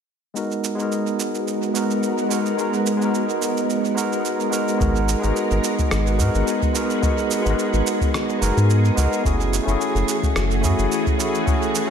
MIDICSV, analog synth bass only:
0, 0, Header, 1, 2, 480
1, 0, Start_track
1, 0, Key_signature, 5, "minor"
1, 0, Tempo, 555556
1, 312, Time_signature, 4, 2, 24, 8
1, 10282, End_track
2, 0, Start_track
2, 0, Title_t, "Analog synth bass"
2, 0, Program_c, 0, 38
2, 4151, Note_on_c, 0, 32, 92
2, 4450, Note_off_c, 0, 32, 0
2, 4524, Note_on_c, 0, 32, 73
2, 4595, Note_off_c, 0, 32, 0
2, 4760, Note_on_c, 0, 32, 96
2, 4833, Note_off_c, 0, 32, 0
2, 5111, Note_on_c, 0, 32, 78
2, 5353, Note_on_c, 0, 44, 83
2, 5366, Note_off_c, 0, 32, 0
2, 5438, Note_off_c, 0, 44, 0
2, 5483, Note_on_c, 0, 32, 89
2, 5555, Note_off_c, 0, 32, 0
2, 6442, Note_on_c, 0, 32, 82
2, 6515, Note_off_c, 0, 32, 0
2, 6679, Note_on_c, 0, 32, 94
2, 6753, Note_off_c, 0, 32, 0
2, 7271, Note_on_c, 0, 30, 101
2, 7357, Note_off_c, 0, 30, 0
2, 7403, Note_on_c, 0, 44, 94
2, 7692, Note_off_c, 0, 44, 0
2, 7752, Note_on_c, 0, 37, 100
2, 7837, Note_off_c, 0, 37, 0
2, 7991, Note_on_c, 0, 30, 88
2, 8290, Note_off_c, 0, 30, 0
2, 8354, Note_on_c, 0, 30, 81
2, 8430, Note_off_c, 0, 30, 0
2, 8595, Note_on_c, 0, 30, 95
2, 8671, Note_off_c, 0, 30, 0
2, 8949, Note_on_c, 0, 30, 90
2, 9191, Note_on_c, 0, 42, 82
2, 9204, Note_off_c, 0, 30, 0
2, 9277, Note_off_c, 0, 42, 0
2, 9317, Note_on_c, 0, 30, 85
2, 9392, Note_off_c, 0, 30, 0
2, 10282, End_track
0, 0, End_of_file